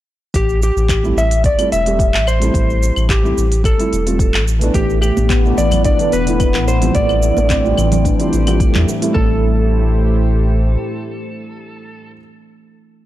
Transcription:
0.34 A1 G4, kick, open hi-hat, cabasa
0.49 cabasa
0.63 G4, cabasa
0.76 A1, cabasa
0.89 kick, clap, open hi-hat, cabasa, claves
1.03 G3 A3 C4 E4, cabasa
1.16 A1 E5, cabasa
1.31 open hi-hat, cabasa
1.44 D5, kick, open hi-hat, cabasa
1.58 G3 A3 C4 E4, open hi-hat, cabasa, claves
1.72 E1 E5, open hi-hat, cabasa
1.85 G3 A3 C4 G4, open hi-hat, cabasa
1.99 kick, open hi-hat, cabasa
2.14 A1, clap, cabasa
2.27 C5, cabasa, claves
2.40 G3 A3 C4 E4, open hi-hat, cabasa
2.54 A1, kick, open hi-hat, cabasa
2.70 cabasa
2.83 cabasa
2.96 A1, cabasa, claves
3.09 G4, kick, clap, open hi-hat, cabasa
3.23 G3 A3 C4 E4, cabasa
3.37 A1, cabasa
3.52 open hi-hat, cabasa
3.64 A4, kick, open hi-hat, cabasa, claves
3.78 G3 A3 C4 E4, open hi-hat, cabasa
3.92 E1, open hi-hat, cabasa
4.05 G3 A3 C4 F4, open hi-hat, cabasa
4.19 kick, open hi-hat, cabasa
4.34 A1, clap, cabasa, claves
4.48 cabasa
4.59 E3 A3 B3, open hi-hat, cabasa
4.63 D4
4.74 A1 A2 A3 G4, kick, open hi-hat, cabasa
4.84 A3
4.90 cabasa
5.02 G4, cabasa, claves
5.17 A1 D4, high conga, cabasa
5.30 B3, kick, clap, open hi-hat, cabasa
5.41 E3 A3 B4
5.45 B3 D4, cabasa
5.57 A1 E3 D5, high conga, cabasa
5.71 E3 E4, open hi-hat, low conga, cabasa, claves
5.85 D4 D5, kick, open hi-hat, cabasa
5.99 E3 A3 B3 D4, open hi-hat, cabasa
6.12 E1 B3 B4, open hi-hat, high bongo, cabasa
6.26 E3 A3 B3 E4, open hi-hat, cabasa
6.40 B3, kick, open hi-hat, cabasa, claves
6.54 A1, clap, high bongo, cabasa
6.68 C5, high bongo, cabasa
6.81 E3 F3 G3 C4, open hi-hat, high conga, cabasa
6.85 E4
6.95 A1 A3 D5, kick, open hi-hat, cabasa
7.09 cabasa, claves
7.23 cabasa
7.37 A1, high bongo, high conga, cabasa
7.50 C4, kick, clap, open hi-hat, cabasa
7.64 F3 G3 C4 E4, cabasa
7.77 A1 E3, cabasa, claves
7.92 E3 G4 C5, open hi-hat, low conga, cabasa
8.05 D4, kick, open hi-hat, cabasa
8.19 E3 F3 G3 C4 E4, open hi-hat, cabasa
8.33 A1 E4, open hi-hat, cabasa
8.46 F3 G3 C4 F4, open hi-hat, high bongo, high conga, cabasa, claves
8.60 A3, kick, open hi-hat, cabasa
8.75 E2, clap, low conga, cabasa
8.88 high bongo, cabasa
9.01 G3 A3 C4 E4, open hi-hat, cabasa
9.12 A1 A2 G3 A3 A4, kick
9.16 C4 E4
9.24 A3
9.32 E4
9.40 G4
9.49 C5

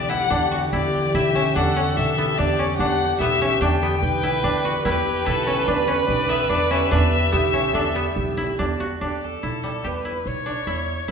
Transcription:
Already playing: B1 D3 E3 B3 D4 G4 D5
0.10 E4 F#5
0.30 E2 D4
0.51 F#4
0.73 E2 E4 G4 D5
1.14 B1 E4 E5
1.35 C#4
1.56 E2 D4 A4 F#5
1.76 C#4
1.97 B1 E5
2.18 B3
2.38 E2 D4 G4 D5
2.59 C#4
2.78 E2 D4 F#5
3.20 B1 B3 E5
3.41 C#4
3.61 E2 D4 G5
3.83 B3
4.02 B1 B4
4.23 E4
4.44 E2 D4
4.65 F#4
4.85 E2 E4 G4 B4
5.25 B1 E4 A4
5.47 C#4
5.68 E2 D4 B4
5.88 C#4
6.08 B1 D5
6.29 B3 E5
6.50 E2 D4 D5
6.71 C#4 E5
6.91 E2 D4
7.32 B1 B3 G4
7.53 C#4
7.73 E2 D4 A4
7.95 B3 G4
8.16 B1
8.37 E4
8.59 E2 D4
8.80 F#4
9.01 E2 D4 G4
9.24 A4
9.43 B1 E4
9.64 G3
9.84 E2 G4 B4
10.05 E4
10.26 B1 C#5
10.46 D4
10.67 E2 E4
11.08 E4

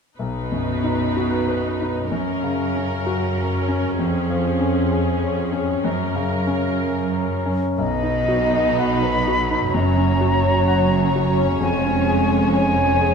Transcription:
0.17 B1 B2 D#4 B4
0.52 F#2
0.84 D#4
1.17 F#4
1.48 B4
1.81 D#4
2.10 F#2 C#4 A#4
2.43 C#3
2.76 C#4
3.06 F#4
3.38 A#4
3.68 C#4
3.98 F2 G#4
4.30 F3
4.61 C#4
4.91 G#4
5.22 C#5
5.52 C#4
5.83 F#2 A#4
6.15 C#3
6.47 C#4
6.80 A#4
7.13 C#5
7.46 C#4
7.77 B1 B2 F#3 D#4 B4 D#5
8.03 D#4
8.28 F#4
8.54 D#5
8.78 F#5 B5
9.03 B4
9.28 F#4
9.51 D#4
9.73 F#1 F#2 C#4 C#5 A#5
9.97 C#4
10.21 F#4
10.45 C#5
10.67 F#5
10.92 C#5
11.16 F#4
11.39 C#4
11.61 F1 F2 G#3 G#5
11.85 C#4
12.07 G#4
12.31 C#5
12.53 G#5
12.78 C#5
13.01 G#4

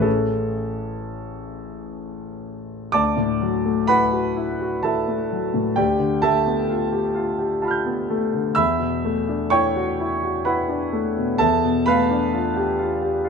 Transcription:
Already playing: A1 E3 A3
0.00 C#4 G#4 A4
2.92 D2 D5 A5 D6
3.17 A2
3.41 F#3
3.65 A3
3.87 E4 B4 F#5 B5
4.13 F#4
4.37 E4
4.61 F#4
4.83 E4 A4 E5 A5
5.08 A3
5.31 F#3
5.54 A2
5.76 D2 G4 D5 G5
5.99 D3
6.22 A3 A4 E5 A5
6.47 B3
6.69 F4
6.92 G4
7.15 F4
7.39 G4
7.62 F4 A5 B5
7.68 F6 G6
7.86 B3
8.10 A3
8.33 D3
8.55 E2 E5 B5 E6
8.80 B2
9.05 A3
9.29 D4
9.50 E4 C#5 G5 C#6
9.76 F#4
10.00 E4
10.24 F#4
10.45 E4 B4 F#5 B5
10.69 D4
10.93 A3
11.17 B2
11.38 E2 A4 E5 A5
11.64 B2
11.86 A3 B4 F5 B5
12.10 D4
12.33 F4
12.56 G4
12.79 F4
13.02 G4
13.24 F4

